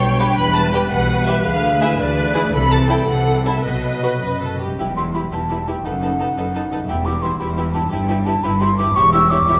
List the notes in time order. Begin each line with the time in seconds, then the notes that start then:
Already playing: B1 B2 G3 B3 B4 C#5 D5 G5
0.02 D4
0.20 G3 G4 B4
0.38 E1 E2 E3 G3 B4 B5
0.55 G3 A5
0.73 E4 G4 B4 G5
0.91 B1 B2 G4 F#5
1.27 E4 G4 B4 E5
1.45 D2 D3 E3 G#4 F5
1.63 D4
1.81 G#3 E4 G#4 E5
1.99 D2 B4 D5
2.17 E4
2.35 G#3 E4 G#4
2.53 C2 C3 A4 B5
2.72 C4 A5
2.90 A3 E4 A4 G5
3.08 C2 C3 A4 F#5
3.27 E4
3.46 A3 E4 A4 E5
3.65 B1 B2 F#3 B4 D#5
3.85 B3
4.03 F#3 F#4 B4
4.22 F#1 F#2 B4
4.41 F#4 A4
4.60 E2 F#3 G4
4.66 G3
4.70 E4
4.75 E1 G4 B4
4.79 E2 E4 B4 G5
4.96 E4 G4 B4 C6
5.14 E4 G4 B4 B5
5.32 E1 E2 E4 G4 B4 A5
5.49 E4 G4 B4
5.67 F#2 E4 G4 B4 G5
5.71 A3
5.76 D#4
5.80 F#1 B4
5.84 F#2 D#4 A4 B4 F#5
6.02 D#4 A4 B4
6.20 D#4 A4 B4
6.36 F#1 F#2 D#4 A4 B4
6.54 D#4 A4 B4
6.71 E2 D#4 A4 B4
6.75 G3
6.80 E4
6.84 E1 E2 B4
6.88 E4 G4 B4 G5
7.05 E4 G4 B4 D6
7.22 E4 G4 B4 C6
7.39 E1 E2 E4 G4 B4 B5
7.57 E4 G4 B4
7.73 G2 E4 G4 B4 A5
7.78 G3
7.83 E4
7.87 G1 G2 G4 B4
7.92 E4 B4 G5
8.08 E4 G4 B4
8.26 E4 G4 B4 A5
8.43 G1 G2 E4 G4 B4 B5
8.60 E4 G4 B4 C6
8.78 E2 E4 G4 B4 D6
8.83 G3
8.87 E4
8.92 C#5
8.96 E1 E2 E4 G4 C#6
9.13 E4 G4 C#5 E6
9.30 E4 G4 C#5 D6
9.47 E1 E2 E4 G4 C#5